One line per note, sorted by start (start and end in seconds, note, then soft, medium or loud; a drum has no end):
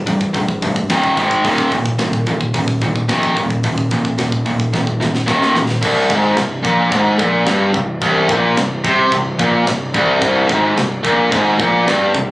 0.06 0.26 C1 medium
0.06 0.31 C2 medium
0.06 0.31 G2 medium
0.06 kick medium
0.06 open hi-hat medium
0.21 kick medium
0.33 0.54 A#1 medium
0.33 0.59 C2 medium
0.33 0.59 G2 medium
0.33 kick medium
0.33 open hi-hat medium
0.48 kick medium
0.62 0.82 D1 medium
0.62 0.87 C2 medium
0.62 0.87 G2 medium
0.62 kick medium
0.62 open hi-hat medium
0.76 kick medium
0.90 1.09 D#1 medium
0.90 1.16 D#2 loud
0.90 1.16 A#2 medium
0.90 1.16 D#3 loud
0.90 kick medium
0.90 snare loud
0.90 open hi-hat medium
1.04 kick medium
1.17 1.37 G#1 medium
1.17 1.43 G#2 medium
1.17 1.43 D#3 medium
1.17 1.44 G#3 loud
1.17 kick medium
1.17 open hi-hat medium
1.31 kick medium
1.44 1.64 D#1 medium
1.44 1.70 D#2 medium
1.44 1.71 A#2 medium
1.44 1.71 D#3 medium
1.44 kick medium
1.44 open hi-hat medium
1.58 kick medium
1.71 1.91 C1 medium
1.71 1.96 D#2 medium
1.71 1.97 A#2 medium
1.71 kick medium
1.71 open hi-hat medium
1.86 kick medium
1.98 2.38 C2 medium
1.98 2.24 D#2 medium
1.98 2.24 A#2 medium
1.98 kick medium
1.98 snare loud
1.98 open hi-hat medium
2.13 kick medium
2.26 2.52 D#2 medium
2.26 2.52 A#2 medium
2.26 kick medium
2.26 open hi-hat medium
2.41 kick medium
2.54 2.74 D#1 medium
2.54 2.79 D#2 medium
2.54 2.79 A#2 medium
2.54 kick medium
2.54 open hi-hat medium
2.68 kick medium
2.81 3.01 C2 medium
2.81 3.07 D#2 medium
2.81 3.07 A#2 medium
2.81 kick medium
2.81 open hi-hat medium
2.96 kick medium
3.08 3.28 A#1 medium
3.08 3.35 D#2 medium
3.08 3.35 A#2 medium
3.08 3.35 D#3 loud
3.08 kick medium
3.08 snare loud
3.08 open hi-hat medium
3.23 kick medium
3.36 3.56 D#1 medium
3.36 3.61 D#2 medium
3.36 3.62 A#2 medium
3.36 kick medium
3.36 open hi-hat medium
3.50 kick medium
3.63 3.84 D#1 medium
3.63 3.89 D#2 medium
3.63 3.90 A#2 medium
3.63 kick medium
3.63 open hi-hat medium
3.78 kick medium
3.91 4.11 A#1 medium
3.91 4.17 D#2 medium
3.91 4.17 A#2 medium
3.91 kick medium
3.91 open hi-hat medium
4.05 kick medium
4.18 4.38 D#1 medium
4.18 4.44 D#2 medium
4.18 4.44 A#2 medium
4.18 kick medium
4.18 snare loud
4.18 open hi-hat medium
4.32 kick medium
4.46 4.66 D#1 medium
4.46 4.71 D#2 medium
4.46 4.71 A#2 medium
4.46 kick medium
4.46 open hi-hat medium
4.60 kick medium
4.73 4.94 C1 medium
4.73 4.98 D#2 medium
4.73 4.99 A#2 medium
4.73 kick medium
4.73 snare medium
4.87 kick medium
5.00 5.20 C1 medium
5.00 5.25 D#2 medium
5.00 5.26 A#2 medium
5.00 snare medium
5.15 snare medium
5.26 5.48 D#1 medium
5.26 5.54 D#2 medium
5.26 5.54 A#2 medium
5.26 5.54 D#3 loud
5.26 kick medium
5.26 snare medium
5.42 snare medium
5.54 5.74 D#1 medium
5.54 5.81 D#2 medium
5.54 5.81 A#2 medium
5.54 snare loud
5.69 snare medium
5.82 6.09 C1 loud
5.82 6.10 C2 loud
5.82 kick loud
5.82 crash loud
5.82 china medium
6.10 6.36 G#1 loud
6.10 6.37 G#2 loud
6.10 kick loud
6.37 6.64 C1 medium
6.37 6.60 C2 medium
6.37 snare loud
6.37 china medium
6.63 6.91 A#1 medium
6.63 6.91 A#2 loud
6.63 kick loud
6.91 7.18 G#1 loud
6.91 7.19 G#2 loud
6.91 kick loud
6.91 china medium
7.19 7.46 A#1 medium
7.19 7.46 A#2 loud
7.19 kick loud
7.46 7.73 G1 medium
7.46 7.73 G2 loud
7.46 snare loud
7.46 china medium
7.74 8.01 C1 medium
7.74 7.97 C2 medium
7.74 kick medium
8.02 8.28 C1 loud
8.02 8.29 C2 loud
8.02 kick loud
8.02 china medium
8.29 8.55 A#1 loud
8.29 8.57 A#2 loud
8.29 kick loud
8.56 8.83 C1 medium
8.56 8.80 C2 medium
8.56 snare loud
8.56 china medium
8.84 9.11 C2 loud
8.84 9.12 C3 loud
8.84 kick loud
9.12 9.38 C1 medium
9.12 9.34 C2 medium
9.12 kick loud
9.12 china medium
9.39 9.66 A#1 loud
9.39 9.66 A#2 loud
9.39 kick loud
9.67 9.93 C1 medium
9.67 9.89 C2 medium
9.67 snare loud
9.67 china medium
9.94 10.20 C1 loud
9.94 10.20 C2 loud
9.94 kick loud
10.21 10.48 C1 loud
10.21 10.48 C2 loud
10.21 kick loud
10.21 china medium
10.49 10.75 G#1 loud
10.49 10.76 G#2 loud
10.49 kick loud
10.77 11.03 C1 medium
10.77 10.99 C2 medium
10.77 snare loud
10.77 china medium
11.03 11.30 A#1 loud
11.03 11.31 A#2 loud
11.03 kick loud
11.31 11.58 G#1 loud
11.31 11.58 G#2 loud
11.31 kick loud
11.31 china medium
11.59 11.85 A#1 loud
11.59 11.86 A#2 loud
11.59 kick loud
11.86 12.14 G1 medium
11.86 12.13 G2 loud
11.86 snare loud
11.86 china medium
12.14 12.31 C1 medium
12.14 12.31 C2 medium
12.14 kick loud